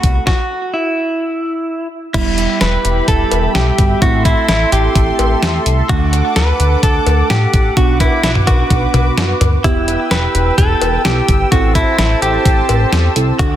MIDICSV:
0, 0, Header, 1, 6, 480
1, 0, Start_track
1, 0, Key_signature, 1, "minor"
1, 0, Tempo, 468750
1, 275, Time_signature, 4, 2, 24, 8
1, 13886, End_track
2, 0, Start_track
2, 0, Title_t, "Analog synth pad"
2, 0, Program_c, 0, 89
2, 0, Note_on_c, 0, 69, 79
2, 0, Note_on_c, 0, 83, 90
2, 257, Note_off_c, 0, 69, 0
2, 257, Note_off_c, 0, 83, 0
2, 2194, Note_on_c, 0, 76, 76
2, 2194, Note_on_c, 0, 83, 89
2, 2195, Note_on_c, 0, 67, 83
2, 4096, Note_off_c, 0, 67, 0
2, 4096, Note_off_c, 0, 83, 0
2, 4115, Note_on_c, 0, 84, 91
2, 4116, Note_on_c, 0, 69, 81
2, 5997, Note_off_c, 0, 76, 0
2, 6016, Note_off_c, 0, 84, 0
2, 6035, Note_on_c, 0, 86, 90
2, 6036, Note_on_c, 0, 78, 75
2, 7917, Note_off_c, 0, 69, 0
2, 7936, Note_off_c, 0, 86, 0
2, 7955, Note_on_c, 0, 71, 84
2, 7955, Note_on_c, 0, 86, 88
2, 9837, Note_off_c, 0, 78, 0
2, 9856, Note_off_c, 0, 71, 0
2, 9856, Note_off_c, 0, 86, 0
2, 9876, Note_on_c, 0, 71, 82
2, 9877, Note_on_c, 0, 79, 73
2, 9877, Note_on_c, 0, 88, 89
2, 11777, Note_off_c, 0, 71, 0
2, 11777, Note_off_c, 0, 79, 0
2, 11795, Note_on_c, 0, 72, 81
2, 11795, Note_on_c, 0, 81, 72
2, 13678, Note_off_c, 0, 88, 0
2, 13696, Note_off_c, 0, 72, 0
2, 13696, Note_off_c, 0, 81, 0
2, 13714, Note_on_c, 0, 86, 88
2, 13715, Note_on_c, 0, 69, 83
2, 13715, Note_on_c, 0, 78, 76
2, 13886, Note_off_c, 0, 69, 0
2, 13886, Note_off_c, 0, 78, 0
2, 13886, Note_off_c, 0, 86, 0
2, 13886, End_track
3, 0, Start_track
3, 0, Title_t, "Clean electric guitar"
3, 0, Program_c, 1, 27
3, 0, Note_on_c, 1, 66, 109
3, 241, Note_off_c, 1, 66, 0
3, 273, Note_on_c, 1, 66, 111
3, 753, Note_on_c, 1, 64, 85
3, 769, Note_off_c, 1, 66, 0
3, 1914, Note_off_c, 1, 64, 0
3, 2195, Note_on_c, 1, 64, 99
3, 2642, Note_off_c, 1, 64, 0
3, 2675, Note_on_c, 1, 71, 110
3, 3152, Note_off_c, 1, 71, 0
3, 3156, Note_on_c, 1, 69, 101
3, 3602, Note_off_c, 1, 69, 0
3, 3635, Note_on_c, 1, 67, 97
3, 4112, Note_off_c, 1, 67, 0
3, 4116, Note_on_c, 1, 66, 102
3, 4339, Note_off_c, 1, 66, 0
3, 4355, Note_on_c, 1, 64, 89
3, 4585, Note_off_c, 1, 64, 0
3, 4597, Note_on_c, 1, 64, 88
3, 4820, Note_off_c, 1, 64, 0
3, 4837, Note_on_c, 1, 67, 85
3, 5755, Note_off_c, 1, 67, 0
3, 6036, Note_on_c, 1, 66, 104
3, 6482, Note_off_c, 1, 66, 0
3, 6516, Note_on_c, 1, 71, 113
3, 6992, Note_off_c, 1, 71, 0
3, 6996, Note_on_c, 1, 69, 103
3, 7473, Note_off_c, 1, 69, 0
3, 7477, Note_on_c, 1, 67, 97
3, 7952, Note_off_c, 1, 67, 0
3, 7956, Note_on_c, 1, 66, 101
3, 8193, Note_off_c, 1, 66, 0
3, 8197, Note_on_c, 1, 64, 89
3, 8425, Note_off_c, 1, 64, 0
3, 8437, Note_on_c, 1, 64, 86
3, 8502, Note_off_c, 1, 64, 0
3, 8675, Note_on_c, 1, 66, 86
3, 9595, Note_off_c, 1, 66, 0
3, 9875, Note_on_c, 1, 64, 100
3, 10355, Note_on_c, 1, 71, 108
3, 10370, Note_off_c, 1, 64, 0
3, 10830, Note_off_c, 1, 71, 0
3, 10834, Note_on_c, 1, 69, 102
3, 11281, Note_off_c, 1, 69, 0
3, 11313, Note_on_c, 1, 67, 99
3, 11789, Note_off_c, 1, 67, 0
3, 11793, Note_on_c, 1, 66, 98
3, 12018, Note_off_c, 1, 66, 0
3, 12035, Note_on_c, 1, 64, 88
3, 12262, Note_off_c, 1, 64, 0
3, 12274, Note_on_c, 1, 64, 87
3, 12510, Note_off_c, 1, 64, 0
3, 12514, Note_on_c, 1, 67, 87
3, 13434, Note_off_c, 1, 67, 0
3, 13716, Note_on_c, 1, 66, 105
3, 13886, Note_off_c, 1, 66, 0
3, 13886, End_track
4, 0, Start_track
4, 0, Title_t, "FM electric piano"
4, 0, Program_c, 2, 5
4, 0, Note_on_c, 2, 57, 68
4, 0, Note_on_c, 2, 59, 64
4, 0, Note_on_c, 2, 60, 74
4, 238, Note_off_c, 2, 57, 0
4, 238, Note_off_c, 2, 59, 0
4, 238, Note_off_c, 2, 60, 0
4, 2195, Note_on_c, 2, 55, 68
4, 2195, Note_on_c, 2, 59, 63
4, 2195, Note_on_c, 2, 64, 76
4, 3842, Note_off_c, 2, 55, 0
4, 3842, Note_off_c, 2, 59, 0
4, 3842, Note_off_c, 2, 64, 0
4, 3876, Note_on_c, 2, 59, 48
4, 3876, Note_on_c, 2, 66, 54
4, 3877, Note_on_c, 2, 55, 51
4, 4116, Note_off_c, 2, 55, 0
4, 4116, Note_off_c, 2, 59, 0
4, 4116, Note_off_c, 2, 66, 0
4, 4116, Note_on_c, 2, 60, 64
4, 4117, Note_on_c, 2, 57, 68
4, 4117, Note_on_c, 2, 64, 76
4, 5998, Note_off_c, 2, 57, 0
4, 5998, Note_off_c, 2, 60, 0
4, 5998, Note_off_c, 2, 64, 0
4, 6037, Note_on_c, 2, 57, 71
4, 6037, Note_on_c, 2, 62, 64
4, 6037, Note_on_c, 2, 78, 77
4, 7918, Note_off_c, 2, 57, 0
4, 7918, Note_off_c, 2, 62, 0
4, 7918, Note_off_c, 2, 78, 0
4, 7956, Note_on_c, 2, 59, 70
4, 7956, Note_on_c, 2, 62, 66
4, 7956, Note_on_c, 2, 66, 78
4, 9837, Note_off_c, 2, 62, 0
4, 9837, Note_off_c, 2, 66, 0
4, 9838, Note_off_c, 2, 59, 0
4, 9876, Note_on_c, 2, 64, 62
4, 9876, Note_on_c, 2, 67, 76
4, 9877, Note_on_c, 2, 59, 70
4, 11287, Note_off_c, 2, 59, 0
4, 11287, Note_off_c, 2, 64, 0
4, 11287, Note_off_c, 2, 67, 0
4, 11316, Note_on_c, 2, 64, 45
4, 11316, Note_on_c, 2, 67, 55
4, 11317, Note_on_c, 2, 59, 50
4, 11784, Note_off_c, 2, 64, 0
4, 11796, Note_off_c, 2, 59, 0
4, 11796, Note_off_c, 2, 67, 0
4, 11796, Note_on_c, 2, 60, 69
4, 11796, Note_on_c, 2, 64, 65
4, 11796, Note_on_c, 2, 69, 80
4, 13442, Note_off_c, 2, 60, 0
4, 13442, Note_off_c, 2, 64, 0
4, 13442, Note_off_c, 2, 69, 0
4, 13476, Note_on_c, 2, 60, 61
4, 13476, Note_on_c, 2, 64, 57
4, 13476, Note_on_c, 2, 69, 68
4, 13704, Note_off_c, 2, 69, 0
4, 13716, Note_off_c, 2, 60, 0
4, 13716, Note_off_c, 2, 64, 0
4, 13716, Note_on_c, 2, 69, 79
4, 13717, Note_on_c, 2, 62, 73
4, 13886, Note_off_c, 2, 62, 0
4, 13886, Note_off_c, 2, 69, 0
4, 13886, End_track
5, 0, Start_track
5, 0, Title_t, "Analog synth bass"
5, 0, Program_c, 3, 38
5, 36, Note_on_c, 3, 36, 93
5, 204, Note_off_c, 3, 36, 0
5, 2195, Note_on_c, 3, 28, 111
5, 2531, Note_off_c, 3, 28, 0
5, 2676, Note_on_c, 3, 28, 94
5, 2844, Note_off_c, 3, 28, 0
5, 2916, Note_on_c, 3, 28, 102
5, 3084, Note_off_c, 3, 28, 0
5, 3154, Note_on_c, 3, 28, 108
5, 3322, Note_off_c, 3, 28, 0
5, 3395, Note_on_c, 3, 28, 103
5, 3564, Note_off_c, 3, 28, 0
5, 3636, Note_on_c, 3, 35, 97
5, 3804, Note_off_c, 3, 35, 0
5, 3876, Note_on_c, 3, 31, 93
5, 4044, Note_off_c, 3, 31, 0
5, 4115, Note_on_c, 3, 33, 115
5, 4451, Note_off_c, 3, 33, 0
5, 4596, Note_on_c, 3, 33, 101
5, 4764, Note_off_c, 3, 33, 0
5, 4836, Note_on_c, 3, 33, 103
5, 5004, Note_off_c, 3, 33, 0
5, 5074, Note_on_c, 3, 33, 107
5, 5243, Note_off_c, 3, 33, 0
5, 5316, Note_on_c, 3, 33, 97
5, 5484, Note_off_c, 3, 33, 0
5, 5556, Note_on_c, 3, 40, 98
5, 5724, Note_off_c, 3, 40, 0
5, 5795, Note_on_c, 3, 36, 98
5, 5964, Note_off_c, 3, 36, 0
5, 6036, Note_on_c, 3, 38, 115
5, 6372, Note_off_c, 3, 38, 0
5, 6516, Note_on_c, 3, 38, 101
5, 6684, Note_off_c, 3, 38, 0
5, 6756, Note_on_c, 3, 38, 100
5, 6924, Note_off_c, 3, 38, 0
5, 6994, Note_on_c, 3, 38, 110
5, 7162, Note_off_c, 3, 38, 0
5, 7235, Note_on_c, 3, 38, 96
5, 7403, Note_off_c, 3, 38, 0
5, 7475, Note_on_c, 3, 45, 94
5, 7643, Note_off_c, 3, 45, 0
5, 7716, Note_on_c, 3, 33, 94
5, 7884, Note_off_c, 3, 33, 0
5, 7955, Note_on_c, 3, 35, 107
5, 8291, Note_off_c, 3, 35, 0
5, 8436, Note_on_c, 3, 35, 102
5, 8604, Note_off_c, 3, 35, 0
5, 8679, Note_on_c, 3, 35, 110
5, 8846, Note_off_c, 3, 35, 0
5, 8914, Note_on_c, 3, 35, 109
5, 9082, Note_off_c, 3, 35, 0
5, 9156, Note_on_c, 3, 35, 100
5, 9324, Note_off_c, 3, 35, 0
5, 9396, Note_on_c, 3, 42, 99
5, 9564, Note_off_c, 3, 42, 0
5, 9635, Note_on_c, 3, 38, 88
5, 9804, Note_off_c, 3, 38, 0
5, 9875, Note_on_c, 3, 28, 112
5, 10211, Note_off_c, 3, 28, 0
5, 10356, Note_on_c, 3, 28, 95
5, 10524, Note_off_c, 3, 28, 0
5, 10596, Note_on_c, 3, 28, 102
5, 10764, Note_off_c, 3, 28, 0
5, 10834, Note_on_c, 3, 28, 112
5, 11002, Note_off_c, 3, 28, 0
5, 11077, Note_on_c, 3, 28, 102
5, 11244, Note_off_c, 3, 28, 0
5, 11316, Note_on_c, 3, 35, 96
5, 11484, Note_off_c, 3, 35, 0
5, 11556, Note_on_c, 3, 31, 92
5, 11724, Note_off_c, 3, 31, 0
5, 11795, Note_on_c, 3, 33, 115
5, 12131, Note_off_c, 3, 33, 0
5, 12276, Note_on_c, 3, 33, 94
5, 12444, Note_off_c, 3, 33, 0
5, 12515, Note_on_c, 3, 33, 105
5, 12683, Note_off_c, 3, 33, 0
5, 12754, Note_on_c, 3, 33, 108
5, 12922, Note_off_c, 3, 33, 0
5, 12995, Note_on_c, 3, 33, 93
5, 13163, Note_off_c, 3, 33, 0
5, 13236, Note_on_c, 3, 40, 99
5, 13404, Note_off_c, 3, 40, 0
5, 13475, Note_on_c, 3, 36, 99
5, 13643, Note_off_c, 3, 36, 0
5, 13715, Note_on_c, 3, 38, 115
5, 13886, Note_off_c, 3, 38, 0
5, 13886, End_track
6, 0, Start_track
6, 0, Title_t, "Drums"
6, 36, Note_on_c, 9, 36, 104
6, 36, Note_on_c, 9, 42, 83
6, 138, Note_off_c, 9, 42, 0
6, 139, Note_off_c, 9, 36, 0
6, 275, Note_on_c, 9, 38, 91
6, 276, Note_on_c, 9, 36, 107
6, 378, Note_off_c, 9, 36, 0
6, 378, Note_off_c, 9, 38, 0
6, 2195, Note_on_c, 9, 36, 123
6, 2195, Note_on_c, 9, 42, 76
6, 2195, Note_on_c, 9, 49, 98
6, 2297, Note_off_c, 9, 36, 0
6, 2297, Note_off_c, 9, 42, 0
6, 2297, Note_off_c, 9, 49, 0
6, 2435, Note_on_c, 9, 42, 73
6, 2538, Note_off_c, 9, 42, 0
6, 2672, Note_on_c, 9, 38, 123
6, 2673, Note_on_c, 9, 42, 80
6, 2774, Note_off_c, 9, 38, 0
6, 2775, Note_off_c, 9, 42, 0
6, 2916, Note_on_c, 9, 42, 76
6, 3018, Note_off_c, 9, 42, 0
6, 3153, Note_on_c, 9, 36, 99
6, 3155, Note_on_c, 9, 42, 76
6, 3256, Note_off_c, 9, 36, 0
6, 3258, Note_off_c, 9, 42, 0
6, 3395, Note_on_c, 9, 42, 67
6, 3395, Note_on_c, 9, 56, 70
6, 3497, Note_off_c, 9, 42, 0
6, 3497, Note_off_c, 9, 56, 0
6, 3635, Note_on_c, 9, 38, 105
6, 3636, Note_on_c, 9, 42, 66
6, 3737, Note_off_c, 9, 38, 0
6, 3738, Note_off_c, 9, 42, 0
6, 3875, Note_on_c, 9, 42, 80
6, 3876, Note_on_c, 9, 36, 109
6, 3978, Note_off_c, 9, 42, 0
6, 3979, Note_off_c, 9, 36, 0
6, 4115, Note_on_c, 9, 36, 122
6, 4115, Note_on_c, 9, 42, 79
6, 4217, Note_off_c, 9, 36, 0
6, 4218, Note_off_c, 9, 42, 0
6, 4354, Note_on_c, 9, 36, 99
6, 4356, Note_on_c, 9, 42, 72
6, 4456, Note_off_c, 9, 36, 0
6, 4459, Note_off_c, 9, 42, 0
6, 4593, Note_on_c, 9, 38, 119
6, 4594, Note_on_c, 9, 42, 81
6, 4695, Note_off_c, 9, 38, 0
6, 4697, Note_off_c, 9, 42, 0
6, 4837, Note_on_c, 9, 42, 73
6, 4939, Note_off_c, 9, 42, 0
6, 5074, Note_on_c, 9, 36, 103
6, 5076, Note_on_c, 9, 42, 76
6, 5176, Note_off_c, 9, 36, 0
6, 5178, Note_off_c, 9, 42, 0
6, 5315, Note_on_c, 9, 42, 67
6, 5315, Note_on_c, 9, 56, 73
6, 5417, Note_off_c, 9, 42, 0
6, 5418, Note_off_c, 9, 56, 0
6, 5556, Note_on_c, 9, 38, 109
6, 5557, Note_on_c, 9, 42, 68
6, 5658, Note_off_c, 9, 38, 0
6, 5659, Note_off_c, 9, 42, 0
6, 5797, Note_on_c, 9, 42, 81
6, 5899, Note_off_c, 9, 42, 0
6, 6036, Note_on_c, 9, 36, 122
6, 6036, Note_on_c, 9, 42, 75
6, 6138, Note_off_c, 9, 36, 0
6, 6138, Note_off_c, 9, 42, 0
6, 6277, Note_on_c, 9, 42, 73
6, 6379, Note_off_c, 9, 42, 0
6, 6513, Note_on_c, 9, 38, 119
6, 6514, Note_on_c, 9, 42, 82
6, 6615, Note_off_c, 9, 38, 0
6, 6617, Note_off_c, 9, 42, 0
6, 6756, Note_on_c, 9, 42, 73
6, 6858, Note_off_c, 9, 42, 0
6, 6994, Note_on_c, 9, 36, 100
6, 6996, Note_on_c, 9, 42, 76
6, 7096, Note_off_c, 9, 36, 0
6, 7098, Note_off_c, 9, 42, 0
6, 7235, Note_on_c, 9, 42, 67
6, 7235, Note_on_c, 9, 56, 70
6, 7337, Note_off_c, 9, 42, 0
6, 7337, Note_off_c, 9, 56, 0
6, 7475, Note_on_c, 9, 38, 107
6, 7477, Note_on_c, 9, 42, 70
6, 7578, Note_off_c, 9, 38, 0
6, 7579, Note_off_c, 9, 42, 0
6, 7716, Note_on_c, 9, 36, 106
6, 7716, Note_on_c, 9, 42, 78
6, 7819, Note_off_c, 9, 36, 0
6, 7819, Note_off_c, 9, 42, 0
6, 7955, Note_on_c, 9, 36, 123
6, 7955, Note_on_c, 9, 42, 79
6, 8057, Note_off_c, 9, 36, 0
6, 8057, Note_off_c, 9, 42, 0
6, 8194, Note_on_c, 9, 36, 99
6, 8197, Note_on_c, 9, 42, 72
6, 8197, Note_on_c, 9, 56, 66
6, 8296, Note_off_c, 9, 36, 0
6, 8299, Note_off_c, 9, 42, 0
6, 8300, Note_off_c, 9, 56, 0
6, 8433, Note_on_c, 9, 38, 119
6, 8434, Note_on_c, 9, 42, 77
6, 8535, Note_off_c, 9, 38, 0
6, 8537, Note_off_c, 9, 42, 0
6, 8555, Note_on_c, 9, 45, 85
6, 8657, Note_off_c, 9, 45, 0
6, 8675, Note_on_c, 9, 56, 70
6, 8676, Note_on_c, 9, 42, 73
6, 8679, Note_on_c, 9, 36, 93
6, 8778, Note_off_c, 9, 42, 0
6, 8778, Note_off_c, 9, 56, 0
6, 8781, Note_off_c, 9, 36, 0
6, 8913, Note_on_c, 9, 36, 99
6, 8915, Note_on_c, 9, 42, 77
6, 9016, Note_off_c, 9, 36, 0
6, 9018, Note_off_c, 9, 42, 0
6, 9154, Note_on_c, 9, 42, 64
6, 9155, Note_on_c, 9, 47, 97
6, 9155, Note_on_c, 9, 56, 72
6, 9257, Note_off_c, 9, 42, 0
6, 9257, Note_off_c, 9, 47, 0
6, 9257, Note_off_c, 9, 56, 0
6, 9396, Note_on_c, 9, 38, 106
6, 9397, Note_on_c, 9, 42, 68
6, 9498, Note_off_c, 9, 38, 0
6, 9499, Note_off_c, 9, 42, 0
6, 9636, Note_on_c, 9, 42, 81
6, 9636, Note_on_c, 9, 45, 87
6, 9636, Note_on_c, 9, 56, 64
6, 9738, Note_off_c, 9, 45, 0
6, 9738, Note_off_c, 9, 56, 0
6, 9739, Note_off_c, 9, 42, 0
6, 9875, Note_on_c, 9, 36, 123
6, 9875, Note_on_c, 9, 42, 75
6, 9978, Note_off_c, 9, 36, 0
6, 9978, Note_off_c, 9, 42, 0
6, 10117, Note_on_c, 9, 42, 71
6, 10219, Note_off_c, 9, 42, 0
6, 10353, Note_on_c, 9, 38, 120
6, 10354, Note_on_c, 9, 42, 81
6, 10455, Note_off_c, 9, 38, 0
6, 10457, Note_off_c, 9, 42, 0
6, 10596, Note_on_c, 9, 42, 75
6, 10699, Note_off_c, 9, 42, 0
6, 10834, Note_on_c, 9, 36, 99
6, 10836, Note_on_c, 9, 42, 77
6, 10936, Note_off_c, 9, 36, 0
6, 10938, Note_off_c, 9, 42, 0
6, 11075, Note_on_c, 9, 42, 68
6, 11075, Note_on_c, 9, 56, 73
6, 11177, Note_off_c, 9, 42, 0
6, 11177, Note_off_c, 9, 56, 0
6, 11315, Note_on_c, 9, 38, 108
6, 11316, Note_on_c, 9, 42, 66
6, 11417, Note_off_c, 9, 38, 0
6, 11419, Note_off_c, 9, 42, 0
6, 11556, Note_on_c, 9, 36, 105
6, 11556, Note_on_c, 9, 42, 81
6, 11658, Note_off_c, 9, 42, 0
6, 11659, Note_off_c, 9, 36, 0
6, 11795, Note_on_c, 9, 36, 123
6, 11796, Note_on_c, 9, 42, 78
6, 11898, Note_off_c, 9, 36, 0
6, 11898, Note_off_c, 9, 42, 0
6, 12034, Note_on_c, 9, 36, 102
6, 12037, Note_on_c, 9, 42, 76
6, 12136, Note_off_c, 9, 36, 0
6, 12139, Note_off_c, 9, 42, 0
6, 12273, Note_on_c, 9, 38, 124
6, 12274, Note_on_c, 9, 42, 78
6, 12375, Note_off_c, 9, 38, 0
6, 12377, Note_off_c, 9, 42, 0
6, 12517, Note_on_c, 9, 42, 76
6, 12619, Note_off_c, 9, 42, 0
6, 12754, Note_on_c, 9, 36, 104
6, 12755, Note_on_c, 9, 42, 77
6, 12856, Note_off_c, 9, 36, 0
6, 12858, Note_off_c, 9, 42, 0
6, 12995, Note_on_c, 9, 42, 68
6, 12995, Note_on_c, 9, 56, 70
6, 13097, Note_off_c, 9, 42, 0
6, 13098, Note_off_c, 9, 56, 0
6, 13236, Note_on_c, 9, 38, 107
6, 13237, Note_on_c, 9, 42, 68
6, 13338, Note_off_c, 9, 38, 0
6, 13339, Note_off_c, 9, 42, 0
6, 13476, Note_on_c, 9, 42, 83
6, 13579, Note_off_c, 9, 42, 0
6, 13715, Note_on_c, 9, 36, 125
6, 13715, Note_on_c, 9, 42, 79
6, 13817, Note_off_c, 9, 36, 0
6, 13818, Note_off_c, 9, 42, 0
6, 13886, End_track
0, 0, End_of_file